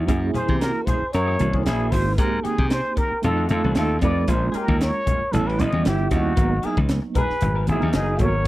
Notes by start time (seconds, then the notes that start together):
0.07 F#2 E3 A#3 C#4 E4 G#4, kick, closed hi-hat
0.21 muted clean electric guitar stroke
0.34 E3 A#3 C#4 G#4 C5, muted slap bass stroke, closed hi-hat, low conga
0.48 C3, muted clean electric guitar stroke, kick, high conga
0.60 F#4 A#4, snare, closed hi-hat
0.75 muted clean electric guitar stroke
0.85 E3 A#3 C#4 G#4 C5, kick, closed hi-hat, low conga
1.01 muted clean electric guitar stroke, muted slap bass stroke
1.12 F#2 A#4 C#5, muted clean electric guitar stroke, closed hi-hat
1.26 E3 A#3 C#4 G#4
1.38 C2 A#3 C#4 E4 F#4, muted clean electric guitar stroke, closed hi-hat, high conga
1.53 A#3 C#4 G#4, kick, high conga
1.64 A#1 E3 A#3 C#4 E4 G#4, snare, closed hi-hat
1.80 muted clean electric guitar stroke
1.91 G#1 A#3 C#4 E4 F#4 G#4 C5, muted clean electric guitar stroke, kick, open hi-hat, low conga
2.17 G#2 D#3 G#3 A#3 C4 D#4 G4 A#4, kick, closed hi-hat
2.32 muted clean electric guitar stroke
2.43 D#3 G#3 C4 F4 G4 G#4, muted slap bass stroke, closed hi-hat
2.58 C3, muted clean electric guitar stroke, kick, high conga
2.70 G#4 C5, snare, closed hi-hat
2.84 muted clean electric guitar stroke
2.96 D#3 G#3 C4 G4 A#4, kick, closed hi-hat
3.11 muted clean electric guitar stroke, muted slap bass stroke
3.22 F2 A3 C4 D#4 F4 F#4 A4, muted clean electric guitar stroke, closed hi-hat, low conga
3.37 D#3 A3 C4 F#4
3.48 F2 A3 C4 D#4 F4 A4, muted clean electric guitar stroke, closed hi-hat, high conga
3.63 C2 A3 C4 F#4, high conga
3.75 D#2 D#3 A3 C4 F4 F#4 A4, snare, closed hi-hat
3.90 muted clean electric guitar stroke
4.01 F2 A3 C4 D#4 A4 B4 D5, muted clean electric guitar stroke, kick, closed hi-hat, low conga
4.27 A#1 G#3 A#3 C#4 F4 C5, kick, closed hi-hat
4.31 G#4
4.41 muted clean electric guitar stroke
4.47 C5
4.52 G#3 C#4 F4 G#4 A#4, muted slap bass stroke, closed hi-hat
4.57 G4
4.68 D#2, muted clean electric guitar stroke, kick, high conga
4.81 A#4 C#5, snare, closed hi-hat
4.94 muted clean electric guitar stroke
5.06 G#3 C#4 F4, kick, closed hi-hat, low conga
5.20 muted clean electric guitar stroke, muted slap bass stroke
5.31 A1 G3 B3 C#4 E4 A4, muted clean electric guitar stroke, closed hi-hat, low conga
5.36 E4
5.46 E3 B3 C#4 G4 B4
5.58 A1 G3 B3 C#4 E4 D#5, muted clean electric guitar stroke, closed hi-hat, high conga
5.63 B4
5.72 E2 B3 C#4 G4, high conga
5.84 G1 E3 B3 C#4 G4, snare, closed hi-hat
5.90 E4
5.98 muted clean electric guitar stroke
6.10 D#2 G3 B3 C#4 E4 F#4, muted clean electric guitar stroke, kick, closed hi-hat, low conga
6.15 D#4
6.36 G#1 F#3 A#3 B3 D#4 A#4, kick, closed hi-hat
6.51 muted clean electric guitar stroke
6.62 F#3 B3 D#4 G#4 A#4, muted slap bass stroke, closed hi-hat
6.67 E4
6.76 C#2, muted clean electric guitar stroke, kick, high conga
6.89 snare, closed hi-hat
7.02 muted clean electric guitar stroke
7.14 F#3 B3 D#4 G#4 A#4 B4, kick, closed hi-hat, low conga
7.29 muted clean electric guitar stroke, muted slap bass stroke, snare
7.41 G#1, muted clean electric guitar stroke, closed hi-hat, low conga
7.55 F#3 B3 D#4 A#4
7.67 G#1 F#3 A#3 B3 D#4 G#4, muted clean electric guitar stroke, closed hi-hat, high conga
7.72 E4
7.80 D#2 B3 D#4 A#4, high conga
7.93 F#1 F#3 B3 D#4 G#4 A#4, snare, closed hi-hat
8.07 muted clean electric guitar stroke
8.19 G#1 F#3 A#3 B3 F#4 C#5, muted clean electric guitar stroke, kick, closed hi-hat, low conga
8.23 A#4
8.44 F#3